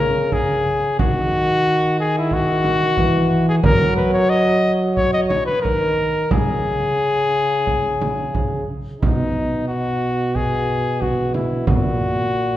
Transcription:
0.00 0.96 C#3 medium
0.00 0.35 A#4 medium
0.32 0.99 G#4 medium
0.32 frame drum soft
0.99 3.00 D#3 medium
0.99 1.97 F#4 loud
0.99 frame drum medium
2.00 2.16 G#4 medium
2.18 2.35 E4 medium
2.31 3.48 F#4 loud
2.31 frame drum soft
2.64 frame drum soft
2.97 3.63 E3 medium
2.97 frame drum medium
3.49 3.56 G#4 medium
3.64 5.32 F#3 medium
3.64 3.96 A#4 loud
3.64 frame drum medium
3.96 4.13 B4 medium
4.14 4.31 C#5 loud
4.30 4.74 D#5 loud
4.96 5.12 C#5 loud
4.96 frame drum soft
5.13 5.21 D#5 medium
5.29 5.45 C#5 medium
5.29 frame drum medium
5.46 5.62 B4 medium
5.62 6.27 D#3 medium
5.62 6.29 A#4 medium
5.62 frame drum soft
6.31 8.66 C#3 medium
6.31 8.64 G#4 loud
6.31 frame drum medium
7.67 frame drum soft
8.02 frame drum soft
8.35 frame drum medium
9.01 11.64 B2 medium
9.01 9.64 D#4 medium
9.01 frame drum medium
9.68 10.37 F#4 medium
10.35 11.03 G#4 medium
10.35 frame drum soft
11.01 11.34 F#4 medium
11.01 frame drum soft
11.34 11.67 E4 medium
11.34 frame drum soft
11.67 12.57 A#2 medium
11.67 12.57 F#4 medium
11.67 frame drum medium

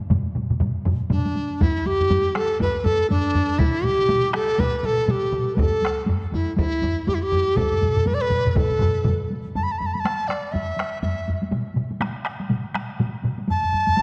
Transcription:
0.01 taiko high soft
0.10 taiko low-mid loud
0.10 taiko mid loud
0.10 taiko high medium
0.26 taiko high soft
0.35 taiko low-mid medium
0.35 taiko mid medium
0.35 taiko high medium
0.51 taiko low-mid medium
0.51 taiko mid medium
0.51 taiko high soft
0.60 taiko low-mid loud
0.60 taiko mid loud
0.60 taiko high medium
0.76 taiko high soft
0.86 taiko low-mid loud
0.86 taiko mid loud
0.86 taiko high medium
1.00 taiko high soft
1.10 1.63 D4 medium
1.10 taiko low-mid loud
1.10 taiko mid loud
1.10 taiko high medium
1.25 taiko high medium
1.35 taiko high medium
1.51 taiko high soft
1.61 1.88 E4 medium
1.61 taiko loud
1.61 taiko low-mid loud
1.61 taiko high medium
1.76 taiko high soft
1.86 2.37 G4 loud
1.86 taiko low-mid medium
1.86 taiko high medium
2.01 taiko low-mid medium
2.01 taiko high soft
2.10 taiko low-mid loud
2.10 taiko high medium
2.26 taiko high soft
2.36 2.61 A4 medium
2.36 taiko rim medium
2.36 taiko high medium
2.50 taiko high soft
2.60 2.79 B4 medium
2.60 taiko loud
2.60 taiko low-mid loud
2.60 taiko high medium
2.75 2.86 B4 medium
2.75 taiko high soft
2.84 3.09 A4 medium
2.84 taiko low-mid loud
2.84 taiko high medium
3.00 taiko high soft
3.10 3.60 D4 medium
3.10 taiko low-mid loud
3.10 taiko high medium
3.35 taiko low-mid medium
3.35 taiko high soft
3.50 taiko high soft
3.59 3.86 E4 medium
3.59 taiko loud
3.59 taiko mid loud
3.59 taiko high medium
3.75 taiko high soft
3.83 4.34 G4 medium
3.83 taiko mid medium
3.83 taiko high medium
3.99 taiko mid medium
3.99 taiko high soft
4.09 taiko mid loud
4.09 taiko high medium
4.24 taiko high soft
4.34 4.61 A4 medium
4.34 taiko rim medium
4.34 taiko high soft
4.50 taiko high soft
4.58 4.79 B4 medium
4.58 taiko loud
4.58 taiko mid medium
4.58 taiko high medium
4.74 taiko high soft
4.79 4.87 B4 medium
4.83 5.05 A4 medium
4.83 taiko mid loud
4.83 taiko high medium
4.98 taiko high soft
5.05 5.12 A4 medium
5.05 taiko mid loud
5.05 taiko high medium
5.11 5.56 G4 medium
5.32 taiko mid loud
5.32 taiko high soft
5.47 taiko high soft
5.55 5.61 B4 medium
5.55 taiko high medium
5.59 6.09 A4 medium
5.59 taiko loud
5.59 taiko low-mid loud
5.72 taiko high soft
5.82 taiko rim medium
5.82 taiko high medium
5.97 taiko high soft
6.06 taiko low-mid loud
6.06 taiko high medium
6.22 taiko high soft
6.32 6.56 E4 medium
6.32 taiko low-mid loud
6.32 taiko high soft
6.47 taiko high soft
6.56 7.09 E4 medium
6.56 taiko loud
6.56 taiko high medium
6.72 taiko high soft
6.82 taiko low-mid loud
6.82 taiko high medium
6.97 taiko high soft
7.07 7.16 G4 medium
7.07 taiko low-mid loud
7.07 taiko high medium
7.15 7.25 E4 medium
7.23 7.58 G4 medium
7.32 taiko low-mid loud
7.32 taiko high soft
7.47 taiko high soft
7.56 8.08 A4 medium
7.56 taiko loud
7.56 taiko low-mid medium
7.56 taiko mid medium
7.56 taiko high medium
7.72 taiko low-mid medium
7.72 taiko mid medium
7.72 taiko high soft
7.81 taiko low-mid medium
7.81 taiko mid medium
7.81 taiko high medium
7.96 taiko low-mid medium
7.96 taiko mid medium
7.96 taiko high soft
8.06 8.16 B4 medium
8.06 taiko low-mid medium
8.06 taiko mid medium
8.06 taiko high medium
8.14 8.23 D5 medium
8.22 8.51 B4 loud
8.22 taiko high soft
8.30 taiko low-mid medium
8.30 taiko mid medium
8.30 taiko high medium
8.45 taiko low-mid medium
8.45 taiko mid medium
8.45 taiko high soft
8.51 8.58 B4 medium
8.55 9.30 A4 medium
8.55 taiko loud
8.55 taiko low-mid medium
8.55 taiko mid loud
8.55 taiko high medium
8.70 taiko low-mid medium
8.70 taiko mid medium
8.70 taiko high soft
8.79 taiko low-mid loud
8.79 taiko mid loud
8.79 taiko high medium
9.04 taiko low-mid loud
9.04 taiko mid loud
9.04 taiko high medium
9.30 taiko high medium
9.45 taiko high soft
9.55 9.65 A5 medium
9.55 taiko low-mid medium
9.55 taiko high medium
9.63 9.73 B5 medium
9.72 9.80 A5 medium
9.78 9.88 B5 medium
9.78 taiko low-mid medium
9.78 taiko high medium
9.86 9.95 A5 medium
9.94 10.01 B5 medium
9.94 taiko high medium
10.00 10.29 A5 medium
10.05 taiko rim medium
10.05 taiko high medium
10.28 10.54 D5 medium
10.28 taiko rim medium
10.28 taiko high soft
10.52 11.01 E5 medium
10.52 taiko low-mid medium
10.52 taiko high medium
10.77 taiko rim medium
10.77 taiko high soft
11.02 11.39 E5 medium
11.02 taiko low-mid medium
11.02 taiko high medium
11.28 taiko low-mid medium
11.28 taiko high medium
11.42 taiko high medium
11.52 taiko mid medium
11.52 taiko high medium
11.76 taiko mid medium
11.76 taiko high soft
11.91 taiko high medium
12.00 taiko rim medium
12.00 taiko high medium
12.25 taiko rim medium
12.40 taiko high soft
12.50 taiko mid medium
12.50 taiko high medium
12.74 taiko rim medium
12.74 taiko high medium
13.00 taiko mid medium
13.00 taiko high medium
13.23 taiko mid medium
13.23 taiko high soft
13.38 taiko high medium
13.48 14.02 A5 loud
13.48 taiko low-mid medium
13.48 taiko high medium
13.64 taiko low-mid medium
13.72 taiko low-mid medium
13.72 taiko high soft
13.87 taiko low-mid medium
13.87 taiko high medium
13.97 taiko low-mid medium
13.97 taiko high medium

